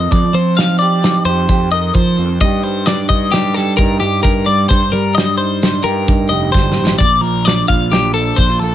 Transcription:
0.00 0.14 D#4 soft
0.00 0.11 D#5 medium
0.11 0.22 F2 medium
0.11 1.94 F3 medium
0.11 0.34 D5 medium
0.11 kick medium
0.11 closed hi-hat medium
0.33 1.16 F3 medium
0.33 2.17 C4 medium
0.33 0.57 C5 medium
0.33 closed hi-hat soft
0.57 1.03 D#4 soft
0.57 0.78 F5 medium
0.57 snare medium
0.57 closed hi-hat medium
0.79 1.27 G4 soft
0.79 1.25 D5 medium
0.79 closed hi-hat medium
1.03 2.43 D#4 medium
1.03 snare medium
1.03 closed hi-hat medium
1.25 1.46 F2 medium
1.25 1.50 G4 soft
1.25 1.71 C5 medium
1.25 closed hi-hat medium
1.49 1.90 F2 medium
1.49 1.73 G4 medium
1.49 kick medium
1.49 closed hi-hat medium
1.71 2.39 A#4 soft
1.71 1.94 D#5 medium
1.71 closed hi-hat soft
1.94 2.16 F3 medium
1.94 2.41 F3 medium
1.94 2.41 C5 medium
1.94 kick medium
1.94 closed hi-hat medium
2.17 2.39 F2 medium
2.17 2.39 C4 soft
2.17 closed hi-hat soft
2.40 3.02 G2 medium
2.40 4.24 G2 medium
2.40 2.64 G3 medium
2.40 2.87 D4 medium
2.40 3.11 D#4 medium
2.40 2.63 D#5 medium
2.40 kick medium
2.40 closed hi-hat medium
2.44 3.57 G4 medium
2.63 4.46 G3 medium
2.63 2.86 C5 medium
2.63 closed hi-hat soft
2.86 3.34 D4 medium
2.86 3.08 D5 medium
2.86 snare medium
2.86 closed hi-hat medium
3.09 3.72 G2 medium
3.09 3.78 D#4 medium
3.09 3.32 D#5 medium
3.09 kick medium
3.09 closed hi-hat medium
3.32 5.17 D4 soft
3.32 3.54 G4 medium
3.32 snare loud
3.32 closed hi-hat medium
3.54 4.02 G4 medium
3.54 3.76 A4 medium
3.54 snare soft
3.54 closed hi-hat medium
3.77 3.99 G2 medium
3.77 4.68 D#4 medium
3.77 3.99 A#4 medium
3.77 kick medium
3.77 closed hi-hat medium
4.00 4.22 G2 medium
4.00 4.23 G4 medium
4.00 5.83 G4 soft
4.00 closed hi-hat medium
4.23 4.66 G2 medium
4.23 4.69 G2 medium
4.23 4.47 A#4 medium
4.23 kick medium
4.23 closed hi-hat medium
4.46 4.68 G3 medium
4.46 4.68 D5 medium
4.46 closed hi-hat medium
4.69 6.53 G2 medium
4.69 4.81 G2 medium
4.69 4.93 C5 medium
4.69 kick loud
4.69 closed hi-hat medium
4.92 5.75 G3 medium
4.92 6.76 G3 medium
4.92 5.16 A#4 medium
4.92 closed hi-hat soft
5.15 5.63 D4 medium
5.15 5.37 D#5 medium
5.15 snare medium
5.15 closed hi-hat medium
5.38 6.07 D#4 soft
5.38 5.84 C5 medium
5.38 closed hi-hat medium
5.62 7.46 D4 soft
5.62 snare loud
5.62 closed hi-hat medium
5.84 6.05 G2 medium
5.84 6.30 G4 medium
5.84 6.30 A#4 medium
5.84 closed hi-hat medium
6.08 6.29 G2 medium
6.08 6.97 D#4 soft
6.08 kick medium
6.08 closed hi-hat medium
6.29 6.51 F1 medium
6.29 7.00 G4 soft
6.29 6.52 D#5 medium
6.29 closed hi-hat medium
6.52 6.75 G1 medium
6.52 6.99 G2 medium
6.52 6.98 C5 medium
6.52 kick medium
6.52 snare soft
6.72 snare medium
6.77 6.97 A1 medium
6.77 6.97 G3 medium
6.87 snare medium
6.99 7.62 A#1 medium
6.99 8.75 A#2 medium
6.99 7.21 D5 medium
6.99 kick loud
6.99 closed hi-hat medium
7.21 8.75 F3 medium
7.21 7.45 A#4 medium
7.21 closed hi-hat soft
7.45 7.91 D4 medium
7.45 7.68 D5 medium
7.45 snare medium
7.45 closed hi-hat medium
7.68 8.31 A#1 medium
7.68 8.37 F4 soft
7.68 7.91 F5 medium
7.68 kick medium
7.68 closed hi-hat medium
7.92 8.37 D4 soft
7.92 8.13 G4 medium
7.92 snare loud
7.92 closed hi-hat medium
8.14 8.37 A4 medium
8.14 8.63 C5 medium
8.14 closed hi-hat medium
8.37 8.58 A#1 medium
8.37 8.49 D4 soft
8.37 8.59 C5 medium
8.37 kick medium
8.37 closed hi-hat medium
8.49 8.75 F4 soft
8.59 8.75 A#1 medium
8.59 8.75 A4 medium
8.59 closed hi-hat medium

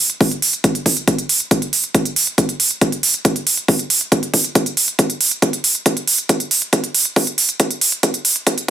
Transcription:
0.10 closed hi-hat soft
0.21 kick loud
0.21 open hi-hat medium
0.31 closed hi-hat soft
0.42 open hi-hat loud
0.53 closed hi-hat soft
0.64 kick loud
0.64 closed hi-hat medium
0.75 closed hi-hat soft
0.86 kick medium
0.86 open hi-hat loud
0.97 closed hi-hat soft
1.08 kick loud
1.08 closed hi-hat medium
1.18 closed hi-hat soft
1.29 open hi-hat loud
1.40 closed hi-hat soft
1.51 kick loud
1.51 closed hi-hat medium
1.62 closed hi-hat soft
1.73 open hi-hat loud
1.84 closed hi-hat soft
1.95 kick loud
1.95 closed hi-hat medium
2.05 closed hi-hat soft
2.16 open hi-hat loud
2.27 closed hi-hat soft
2.38 kick loud
2.38 closed hi-hat medium
2.49 closed hi-hat soft
2.60 open hi-hat loud
2.71 closed hi-hat soft
2.81 kick loud
2.81 closed hi-hat medium
2.92 closed hi-hat soft
3.03 open hi-hat loud
3.14 closed hi-hat soft
3.25 kick loud
3.25 closed hi-hat medium
3.36 closed hi-hat soft
3.47 open hi-hat loud
3.58 closed hi-hat soft
3.68 kick loud
3.68 open hi-hat medium
3.79 closed hi-hat soft
3.90 open hi-hat loud
4.01 closed hi-hat soft
4.12 kick loud
4.12 closed hi-hat medium
4.23 closed hi-hat soft
4.34 kick medium
4.34 open hi-hat loud
4.44 closed hi-hat soft
4.55 kick loud
4.55 closed hi-hat medium
4.66 closed hi-hat soft
4.77 open hi-hat loud
4.88 closed hi-hat soft
4.99 kick loud
4.99 closed hi-hat medium
5.10 closed hi-hat soft
5.21 open hi-hat loud
5.31 closed hi-hat soft
5.42 kick loud
5.42 closed hi-hat medium
5.53 closed hi-hat soft
5.64 open hi-hat loud
5.75 closed hi-hat soft
5.86 kick loud
5.86 closed hi-hat medium
5.97 closed hi-hat soft
6.08 open hi-hat loud
6.18 closed hi-hat soft
6.29 kick loud
6.29 closed hi-hat medium
6.40 closed hi-hat soft
6.51 open hi-hat loud
6.62 closed hi-hat soft
6.73 kick loud
6.73 closed hi-hat medium
6.84 closed hi-hat soft
6.95 open hi-hat loud
7.05 closed hi-hat soft
7.16 kick loud
7.16 open hi-hat medium
7.27 closed hi-hat soft
7.38 open hi-hat loud
7.49 closed hi-hat soft
7.60 kick loud
7.60 closed hi-hat medium
7.71 closed hi-hat soft
7.81 open hi-hat loud
7.92 closed hi-hat soft
8.03 kick loud
8.03 closed hi-hat medium
8.14 closed hi-hat soft
8.25 open hi-hat loud
8.36 closed hi-hat soft
8.47 kick loud
8.47 closed hi-hat medium
8.58 closed hi-hat soft

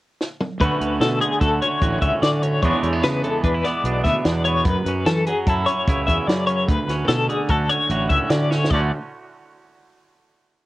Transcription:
0.21 snare medium
0.40 mid tom medium
0.60 2.41 D2 medium
0.60 0.69 D2 medium
0.60 1.19 D3 soft
0.60 2.61 A3 medium
0.60 0.80 C#4 medium
0.60 1.41 F#4 medium
0.60 1.01 B4 medium
0.60 kick medium
0.60 closed hi-hat medium
0.81 0.99 D2 medium
0.81 1.61 C#4 soft
0.81 closed hi-hat medium
1.00 1.19 B2 medium
1.00 1.21 A4 medium
1.00 snare loud
1.00 closed hi-hat medium
1.21 2.63 D3 soft
1.21 1.40 G#4 medium
1.21 closed hi-hat medium
1.41 1.59 D2 medium
1.41 1.81 F#4 soft
1.41 1.61 A4 medium
1.41 kick medium
1.41 closed hi-hat medium
1.62 2.01 C#4 medium
1.62 2.02 C#5 medium
1.62 closed hi-hat medium
1.81 2.00 A1 medium
1.81 2.62 A2 medium
1.81 2.60 F#4 medium
1.81 kick medium
1.81 closed hi-hat medium
2.01 2.11 C#2 medium
2.01 2.61 C#4 medium
2.01 2.22 E5 medium
2.01 kick medium
2.01 closed hi-hat medium
2.22 2.58 D3 medium
2.22 2.42 D5 medium
2.22 snare medium
2.22 closed hi-hat medium
2.42 2.62 D2 medium
2.42 2.61 C#5 medium
2.42 closed hi-hat medium
2.63 4.24 E2 medium
2.63 2.72 E2 medium
2.63 3.23 E3 medium
2.63 4.64 G#3 medium
2.63 2.82 B3 medium
2.63 3.43 D4 medium
2.63 3.03 C#5 medium
2.63 kick medium
2.63 closed hi-hat medium
2.83 3.01 E2 medium
2.83 2.93 A3 medium
2.83 closed hi-hat soft
2.93 3.64 B3 soft
3.03 3.22 C#3 medium
3.03 3.24 B4 medium
3.03 snare medium
3.03 closed hi-hat medium
3.24 4.63 E3 medium
3.24 3.44 A4 medium
3.24 closed hi-hat soft
3.44 3.62 E2 medium
3.44 3.54 D4 medium
3.44 3.64 B4 medium
3.44 kick medium
3.44 closed hi-hat medium
3.54 3.85 E4 soft
3.64 4.05 B3 soft
3.64 4.04 D5 medium
3.64 snare soft
3.64 closed hi-hat medium
3.84 4.02 B1 medium
3.84 4.64 B2 medium
3.84 4.67 D4 soft
3.84 closed hi-hat medium
4.04 4.14 D2 medium
4.04 4.46 B3 soft
4.04 4.25 E5 medium
4.04 kick medium
4.04 snare soft
4.04 closed hi-hat medium
4.25 4.61 E2 medium
4.25 4.64 E2 medium
4.25 4.45 D5 medium
4.25 snare medium
4.25 closed hi-hat medium
4.45 4.64 B3 soft
4.45 4.65 C#5 medium
4.45 closed hi-hat medium
4.65 4.74 F#2 medium
4.65 6.27 F#2 medium
4.65 5.06 B4 medium
4.65 kick medium
4.65 closed hi-hat medium
4.85 5.04 F#2 medium
4.85 5.68 C#4 medium
4.85 closed hi-hat medium
5.06 5.24 E3 medium
5.06 5.27 A4 medium
5.06 snare medium
5.06 closed hi-hat medium
5.27 7.29 F#3 medium
5.27 5.47 G#4 medium
5.27 closed hi-hat medium
5.47 5.65 F#2 medium
5.47 5.88 E4 medium
5.47 5.67 A4 medium
5.47 kick loud
5.47 closed hi-hat medium
5.66 6.08 C#4 medium
5.66 6.07 C#5 medium
5.66 closed hi-hat medium
5.87 6.06 C#2 medium
5.87 6.67 C#3 medium
5.87 6.67 E4 soft
5.87 kick medium
5.87 closed hi-hat medium
6.07 6.17 E2 medium
6.07 6.50 C#4 medium
6.07 6.27 E5 medium
6.07 kick medium
6.07 closed hi-hat medium
6.27 6.67 F#2 medium
6.27 6.64 F#3 medium
6.27 6.47 D5 medium
6.27 snare medium
6.27 closed hi-hat medium
6.47 6.72 C#4 soft
6.47 6.68 C#5 medium
6.47 closed hi-hat medium
6.68 6.77 D2 medium
6.68 8.29 D2 medium
6.68 7.08 B4 medium
6.68 kick loud
6.68 closed hi-hat medium
6.88 7.07 D2 medium
6.88 7.70 C#4 medium
6.88 snare soft
6.88 closed hi-hat soft
7.08 7.27 B2 medium
7.08 7.29 A4 medium
7.08 snare medium
7.08 closed hi-hat medium
7.29 8.72 D3 medium
7.29 7.50 G#4 medium
7.29 closed hi-hat soft
7.48 7.68 D2 medium
7.48 7.90 F#4 soft
7.48 7.69 A4 medium
7.48 kick medium
7.48 closed hi-hat medium
7.69 8.10 C#4 soft
7.69 8.09 C#5 medium
7.69 closed hi-hat medium
7.89 8.08 A1 medium
7.89 8.71 A2 medium
7.89 8.69 F#4 medium
7.89 closed hi-hat medium
8.09 8.19 C#2 medium
8.09 8.50 C#4 medium
8.09 8.30 E5 medium
8.09 kick medium
8.09 closed hi-hat medium
8.30 8.71 D2 medium
8.30 8.66 D3 medium
8.30 8.51 D5 medium
8.30 snare medium
8.30 closed hi-hat medium
8.51 8.69 C#4 medium
8.51 8.70 C#5 medium
8.51 snare medium
8.64 snare medium
8.70 8.90 D2 medium
8.70 8.90 D3 medium
8.70 8.91 A3 medium
8.70 8.91 C#4 medium
8.70 8.91 D5 medium
8.70 kick medium
8.70 crash medium
8.75 8.92 F#4 soft

